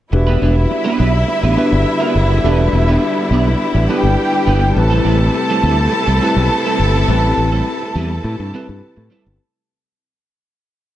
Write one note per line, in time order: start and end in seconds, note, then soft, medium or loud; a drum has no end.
0.12 0.36 E1 loud
0.12 4.72 D3 medium
0.12 9.36 G3 medium
0.12 4.72 B3 medium
0.12 1.09 D4 medium
0.12 2.42 E4 medium
0.12 3.85 E4 medium
0.12 1.09 F#4 medium
0.12 1.10 G4 medium
0.12 1.10 B4 medium
0.12 3.86 E5 medium
0.12 muted clean electric guitar stroke soft
0.27 0.40 B3 medium
0.27 0.41 D4 medium
0.27 0.41 G4 medium
0.27 0.41 B4 medium
0.42 0.65 E1 medium
0.42 0.54 B3 medium
0.42 0.54 D4 medium
0.42 0.54 G4 medium
0.42 0.54 B4 medium
0.56 muted clean electric guitar stroke soft
0.71 muted clean electric guitar stroke soft
0.84 0.98 B3 medium
0.84 0.99 D4 medium
0.84 0.99 G4 medium
0.84 1.00 B4 medium
0.99 1.22 B1 medium
0.99 1.11 B3 medium
0.99 1.12 D4 medium
0.99 1.12 G4 medium
0.99 1.12 B4 medium
1.13 muted clean electric guitar stroke medium
1.28 muted clean electric guitar stroke soft
1.43 1.55 A1 medium
1.43 1.56 B3 medium
1.43 1.56 D4 medium
1.43 1.55 G4 medium
1.43 1.55 B4 medium
1.57 1.73 B3 loud
1.57 2.29 D4 medium
1.57 1.72 D4 medium
1.57 2.30 F#4 medium
1.57 1.71 G4 medium
1.57 2.30 G4 medium
1.57 1.71 B4 loud
1.57 2.30 B4 medium
1.72 1.84 G1 loud
1.72 muted clean electric guitar stroke soft
1.87 muted clean electric guitar stroke soft
2.00 2.13 B3 medium
2.00 2.14 D4 medium
2.00 2.14 G4 medium
2.00 2.14 B4 medium
2.15 2.38 F#1 medium
2.15 muted clean electric guitar stroke soft
2.31 muted clean electric guitar stroke soft
2.44 2.67 E1 medium
2.44 2.60 B3 medium
2.44 3.41 D4 medium
2.44 2.61 D4 medium
2.44 4.74 E4 medium
2.44 3.41 F#4 medium
2.44 3.41 G4 medium
2.44 2.60 G4 medium
2.44 2.51 A4 medium
2.44 2.60 B4 medium
2.52 3.45 B4 medium
2.61 muted clean electric guitar stroke soft
2.73 2.96 E1 medium
2.73 muted clean electric guitar stroke soft
2.88 3.01 B3 medium
2.88 3.01 D4 medium
2.88 3.01 G4 medium
2.88 3.00 B4 medium
3.17 muted clean electric guitar stroke soft
3.31 3.54 B1 medium
3.31 3.47 B3 medium
3.31 3.48 D4 medium
3.31 3.47 G4 loud
3.31 3.48 D5 loud
3.48 muted clean electric guitar stroke soft
3.75 3.86 A1 medium
3.75 muted clean electric guitar stroke soft
3.89 4.05 B3 medium
3.89 4.62 D4 medium
3.89 4.04 D4 medium
3.89 4.62 E4 medium
3.89 4.62 G4 medium
3.89 4.75 G4 medium
3.89 4.03 G4 medium
3.89 4.62 B4 medium
3.89 4.03 B4 medium
3.89 4.76 G5 medium
4.03 4.15 G1 medium
4.03 muted clean electric guitar stroke soft
4.32 muted clean electric guitar stroke soft
4.47 4.70 G1 medium
4.47 4.63 B3 medium
4.47 4.62 D4 medium
4.47 4.61 G4 loud
4.47 4.60 B4 loud
4.62 muted clean electric guitar stroke medium
4.75 4.99 A1 loud
4.75 9.36 C3 medium
4.75 9.36 A3 medium
4.75 4.83 B3 medium
4.75 9.36 E4 loud
4.75 5.73 E4 medium
4.75 5.74 G4 medium
4.75 9.36 A4 medium
4.75 5.74 B4 loud
4.75 9.36 A5 loud
4.75 muted clean electric guitar stroke soft
4.83 5.76 C4 medium
4.90 5.04 G3 medium
4.90 5.04 C4 medium
4.90 5.05 E4 medium
4.90 5.05 A4 medium
5.05 5.28 A1 medium
5.05 5.17 G3 medium
5.05 5.18 C4 medium
5.05 5.18 E4 medium
5.05 5.18 A4 medium
5.20 muted clean electric guitar stroke medium
5.34 muted clean electric guitar stroke soft
5.50 5.63 G3 medium
5.50 5.63 C4 medium
5.50 5.64 E4 medium
5.50 5.64 A4 medium
5.63 5.86 D2 medium
5.63 5.76 G3 medium
5.63 5.76 C4 medium
5.63 5.76 E4 medium
5.63 5.76 A4 medium
5.79 muted clean electric guitar stroke soft
5.92 muted clean electric guitar stroke soft
6.07 6.19 C2 medium
6.07 6.20 G3 medium
6.07 6.20 C4 medium
6.07 6.20 E4 medium
6.07 6.19 A4 medium
6.21 6.37 G3 medium
6.21 6.35 C4 medium
6.21 6.94 C4 medium
6.21 6.35 E4 loud
6.21 6.95 E4 medium
6.21 6.95 G4 medium
6.21 6.34 A4 loud
6.21 6.95 B4 medium
6.36 6.48 B1 medium
6.36 muted clean electric guitar stroke soft
6.50 muted clean electric guitar stroke soft
6.65 6.79 G3 medium
6.65 6.79 C4 medium
6.65 6.79 E4 medium
6.65 6.80 A4 medium
6.80 7.02 G1 medium
6.80 muted clean electric guitar stroke soft
6.96 muted clean electric guitar stroke medium
7.08 7.31 A1 loud
7.08 7.24 G3 medium
7.08 8.05 C4 medium
7.08 7.24 C4 medium
7.08 8.05 E4 medium
7.08 7.24 E4 medium
7.08 8.06 G4 medium
7.08 7.24 A4 medium
7.08 8.06 B4 medium
7.25 muted clean electric guitar stroke soft
7.37 7.60 A1 medium
7.37 muted clean electric guitar stroke soft
7.52 7.65 G3 medium
7.52 7.65 C4 medium
7.52 7.65 E4 medium
7.52 7.64 A4 medium
7.82 muted clean electric guitar stroke soft
7.95 8.18 E2 medium
7.95 8.11 G3 medium
7.95 8.11 C4 medium
7.95 8.10 E4 medium
7.95 8.10 B4 medium
8.10 muted clean electric guitar stroke medium
8.24 8.36 A2 loud
8.40 8.51 G2 medium
8.40 muted clean electric guitar stroke soft
8.54 8.69 G3 medium
8.54 9.26 C4 medium
8.54 8.67 C4 medium
8.54 9.26 E4 medium
8.54 8.67 E4 medium
8.54 9.27 G4 medium
8.54 8.66 A4 loud
8.54 9.27 B4 loud
8.67 8.80 G2 medium
8.67 muted clean electric guitar stroke soft
8.97 9.09 A2 medium
8.97 muted clean electric guitar stroke soft
9.10 9.26 G3 medium
9.10 9.25 C4 medium
9.10 9.24 E4 loud
9.10 9.24 A4 medium
9.25 9.38 G1 medium
9.25 muted clean electric guitar stroke soft